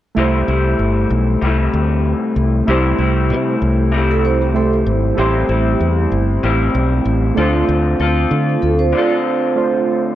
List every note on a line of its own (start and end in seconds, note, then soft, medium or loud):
0.15 0.42 C2 medium
0.15 0.49 C3 medium
0.15 0.49 G3 medium
0.15 2.62 A3 medium
0.15 2.63 E4 medium
0.15 2.64 G4 medium
0.19 0.48 A3 medium
0.19 0.47 E4 medium
0.19 2.65 C5 medium
0.48 0.73 C2 medium
0.48 1.43 G3 soft
0.48 1.45 A3 soft
0.48 1.46 E4 soft
0.79 1.04 G1 medium
1.10 1.36 B1 medium
1.41 1.67 C2 medium
1.41 2.67 C3 medium
1.41 2.68 G3 medium
1.41 2.69 A3 medium
1.47 2.69 E4 medium
1.74 2.12 D2 medium
2.36 2.61 C2 medium
2.66 2.93 C2 medium
2.66 2.99 C3 medium
2.66 2.99 G3 medium
2.66 4.51 A3 medium
2.66 2.99 A3 medium
2.66 4.51 E4 medium
2.66 2.98 E4 medium
2.66 4.52 G4 medium
2.71 4.53 C5 medium
2.98 3.32 C2 medium
2.98 3.94 G3 soft
2.98 3.96 A3 medium
2.98 3.97 E4 medium
3.30 3.55 C3 medium
3.62 4.83 C2 medium
3.92 5.18 C3 medium
3.92 5.18 G3 medium
3.92 4.09 G4 medium
3.96 5.18 A3 medium
3.96 5.19 E4 medium
4.11 4.24 C4 medium
4.11 4.24 A4 medium
4.25 4.41 E4 medium
4.25 4.41 C5 medium
4.42 4.55 G4 medium
4.54 5.14 A3 medium
4.54 4.72 C4 medium
4.54 5.16 E4 medium
4.54 5.17 G4 soft
4.54 4.72 A4 medium
4.54 5.18 C5 medium
4.73 5.16 E4 medium
4.73 5.16 C5 medium
4.86 5.12 G#1 medium
5.15 5.43 A1 medium
5.15 5.49 A2 medium
5.15 5.50 G3 medium
5.15 7.31 A3 medium
5.15 5.49 C4 medium
5.15 7.32 E4 medium
5.15 7.33 G4 medium
5.19 5.48 E4 medium
5.19 7.34 C5 medium
5.49 5.74 A1 medium
5.49 6.43 G3 soft
5.49 6.44 C4 soft
5.49 6.43 E4 medium
5.80 6.05 E2 medium
6.12 6.37 G1 medium
6.43 6.68 A1 medium
6.43 7.37 A2 medium
6.43 7.37 G3 medium
6.43 7.38 C4 medium
6.43 7.38 E4 medium
6.75 7.00 B1 medium
7.05 7.30 A1 medium
7.35 7.62 D2 medium
7.35 9.51 A3 medium
7.35 9.52 D4 medium
7.35 9.52 F4 medium
7.35 8.00 F4 medium
7.35 8.00 A4 medium
7.39 8.01 D3 soft
7.39 8.03 C4 medium
7.39 9.53 C5 medium
7.69 7.93 D2 medium
8.00 8.25 D2 medium
8.00 8.95 C4 soft
8.00 8.94 F4 soft
8.00 8.98 A4 medium
8.31 8.56 D3 medium
8.49 8.62 A3 soft
8.49 8.62 F4 medium
8.62 8.92 D2 medium
8.62 8.79 C4 medium
8.62 8.78 A4 medium
8.79 8.92 C5 medium
8.92 10.15 D3 medium
8.92 10.15 C4 medium
8.92 9.10 F4 medium
8.92 9.09 D5 medium
8.97 10.15 F4 medium
8.97 10.15 A4 medium
9.10 10.00 C5 medium
9.55 10.15 A3 medium
9.55 10.15 D4 soft
9.55 10.15 F4 soft
9.55 10.15 C5 medium